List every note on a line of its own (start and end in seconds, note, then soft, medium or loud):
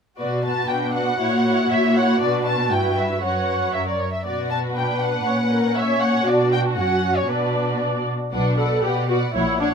0.18 0.64 B2 soft
0.18 0.66 F#4 soft
0.18 0.43 F#4 soft
0.18 0.43 B4 soft
0.18 0.43 D5 soft
0.44 0.68 F#4 soft
0.44 0.68 B4 soft
0.44 0.69 A5 medium
0.69 1.15 B2 soft
0.69 1.21 D4 soft
0.69 0.94 F#4 soft
0.69 0.94 B4 soft
0.69 0.95 G5 soft
0.95 1.20 F#4 soft
0.95 1.20 B4 soft
0.95 1.69 F#5 medium
1.20 1.65 A#2 medium
1.20 1.45 E4 soft
1.20 3.19 F#4 medium
1.20 1.45 C#5 soft
1.46 1.70 E4 soft
1.46 1.70 C#5 soft
1.71 2.15 A#2 medium
1.71 1.95 E4 soft
1.71 1.95 C#5 soft
1.71 1.96 E5 medium
1.95 2.21 E4 soft
1.95 2.21 C#5 soft
1.95 2.21 F#5 medium
2.20 2.68 B2 soft
2.20 2.68 D4 soft
2.20 2.68 B4 soft
2.20 2.45 D5 medium
2.46 2.71 A5 medium
2.71 3.23 G2 soft
2.71 3.22 E4 soft
2.71 3.22 B4 soft
2.71 2.97 G5 medium
2.97 3.23 E5 soft
3.22 3.73 F#2 soft
3.22 3.73 F#4 soft
3.22 3.73 B4 soft
3.22 3.98 C#5 soft
3.22 3.73 F#5 soft
3.74 4.05 F#2 soft
3.74 3.82 F#4 soft
3.74 4.05 A#4 soft
3.74 3.87 E5 soft
3.87 4.00 D5 soft
4.00 4.12 C#5 soft
4.12 4.25 E5 soft
4.24 5.22 B2 soft
4.24 4.72 F#4 soft
4.24 5.72 B4 soft
4.24 4.50 D5 soft
4.50 4.58 A5 medium
4.75 5.26 D4 soft
4.75 5.23 B4 soft
4.75 5.01 G5 soft
5.01 5.77 F#5 medium
5.26 6.27 A#2 soft
5.26 5.76 C#4 soft
5.26 5.34 C#5 soft
5.51 5.76 A#4 soft
5.77 6.26 C#4 soft
5.77 6.27 C#5 medium
5.77 6.27 C#5 soft
5.77 6.02 E5 medium
6.02 6.27 F#5 medium
6.27 6.76 B2 soft
6.27 6.77 D4 soft
6.27 7.28 F#4 soft
6.27 7.27 F#4 medium
6.27 6.52 D5 medium
6.52 6.60 G5 medium
6.77 7.29 F#2 soft
6.77 7.28 C#4 soft
6.77 7.15 F#5 medium
7.16 7.29 C#5 soft
7.29 8.11 B2 soft
7.29 8.13 D4 soft
7.29 8.11 F#4 soft
7.29 7.81 B4 soft
7.29 8.05 D5 soft
8.32 8.76 B1 soft
8.32 8.78 B2 soft
8.32 8.57 D4 medium
8.32 8.57 B4 soft
8.32 8.57 D5 soft
8.32 8.57 F#5 soft
8.58 8.84 A4 medium
8.58 8.83 B4 soft
8.58 8.83 D5 soft
8.58 8.84 F#5 soft
8.84 9.29 B2 soft
8.84 9.10 G4 medium
8.84 9.09 B4 soft
8.84 9.09 D5 soft
8.84 9.09 F#5 soft
9.09 9.17 F#4 medium
9.09 9.35 B4 soft
9.09 9.35 D5 soft
9.09 9.35 F#5 soft
9.34 9.74 A#1 soft
9.34 9.74 A#2 soft
9.34 9.60 E4 medium
9.34 9.59 C#5 soft
9.34 9.59 F#5 soft
9.60 9.68 D4 medium
9.60 9.74 C#5 soft
9.60 9.74 F#5 soft